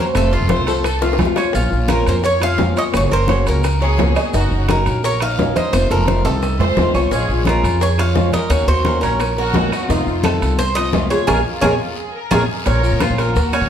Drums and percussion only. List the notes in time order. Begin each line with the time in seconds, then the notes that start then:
0.15 high bongo, high conga, high timbale, long guiro, claves, maracas
0.32 high bongo, high conga, maracas
0.49 high bongo, high conga, high timbale, low timbale, short guiro, maracas
0.67 high bongo, high conga, high timbale, short guiro, maracas
0.84 high bongo, high conga, high timbale, long guiro, claves, maracas
1.02 high bongo, high conga, maracas
1.13 high bongo
1.19 high conga, high timbale, low timbale, short guiro, maracas
1.25 low bongo
1.36 low bongo, high conga, high timbale, short guiro, claves, maracas
1.53 high bongo, high conga, maracas
1.71 high conga, maracas
1.88 high bongo, high conga, high timbale, low timbale, short guiro, claves, maracas
2.07 high timbale, short guiro, maracas
2.23 high bongo, high conga, long guiro, maracas
2.41 high conga, high timbale, claves, maracas
2.58 high bongo, low bongo, high conga, low timbale, short guiro, maracas
2.76 high timbale, short guiro, maracas
2.94 high bongo, high conga, high timbale, claves, maracas
3.11 high bongo, high conga
3.28 high bongo, high conga, high timbale, low timbale, short guiro, maracas
3.46 high bongo, high conga, high timbale, short guiro, maracas
3.63 high bongo, high conga, high timbale, long guiro, claves, maracas
3.81 high bongo, high conga, maracas
3.98 high bongo, low bongo, high conga, high timbale, low timbale, short guiro, maracas
4.16 high conga, high timbale, short guiro, claves, maracas
4.33 high bongo, high conga, maracas
4.51 high conga, maracas
4.68 high bongo, high conga, high timbale, low timbale, short guiro, claves, maracas
4.86 high timbale, short guiro, maracas
5.03 high bongo, high conga, long guiro, maracas
5.20 high conga, high timbale, claves
5.38 high bongo, low bongo, high conga, low timbale, short guiro, maracas
5.56 high conga, high timbale, short guiro, maracas
5.73 high bongo, high conga, high timbale, long guiro, claves, maracas
5.90 high bongo, high conga
6.07 high bongo, high conga, high timbale, low timbale, short guiro, maracas
6.25 high bongo, high conga, high timbale, short guiro, maracas
6.42 high bongo, high conga, high timbale, long guiro, claves, maracas
6.60 high bongo, high conga, low timbale, maracas
6.77 high bongo, low bongo, high conga, low timbale, short guiro, maracas
6.95 high conga, low timbale, short guiro, claves, maracas
7.11 high bongo, high conga, long guiro, maracas
7.29 high conga, maracas
7.45 high bongo, high conga, high timbale, low timbale, short guiro, claves, maracas
7.64 high timbale, short guiro, maracas
7.80 high bongo, high conga, long guiro, maracas
7.98 high conga, high timbale, claves
8.16 high bongo, low bongo, high conga, low timbale, short guiro, maracas
8.33 high conga, high timbale, short guiro, maracas
8.50 high bongo, high conga, high timbale, long guiro, claves, maracas
8.67 high bongo, high conga
8.85 high bongo, high conga, high timbale, low timbale, short guiro, maracas
9.02 high bongo, high conga, high timbale, short guiro, maracas
9.20 high bongo, high conga, high timbale, long guiro, claves, maracas
9.37 high bongo, high conga, maracas
9.54 high bongo, low bongo, high conga, high timbale, low timbale, short guiro, maracas
9.72 high conga, high timbale, short guiro, claves, maracas
9.89 high bongo, high conga, maracas
10.07 high conga, maracas
10.24 high bongo, high conga, high timbale, low timbale, short guiro, claves, maracas
10.42 high timbale, short guiro, maracas
10.58 high bongo, high conga, long guiro, maracas
10.76 high conga, high timbale, claves, maracas
10.93 high bongo, low bongo, high conga, low timbale, short guiro, maracas
11.11 high timbale, short guiro, maracas
11.28 low bongo, high conga, high timbale, long guiro, claves, maracas
11.62 low bongo, high conga, high timbale, long guiro, claves, maracas
12.31 low bongo, high conga, high timbale, long guiro, claves, maracas
12.65 high bongo, high conga, high timbale, long guiro, maracas
12.83 high bongo, high conga, maracas
13.00 high bongo, high conga, high timbale, short guiro, claves, maracas
13.18 high bongo, high timbale, short guiro, maracas
13.35 high bongo, high conga, long guiro, maracas
13.52 high bongo, high conga, high timbale, claves, maracas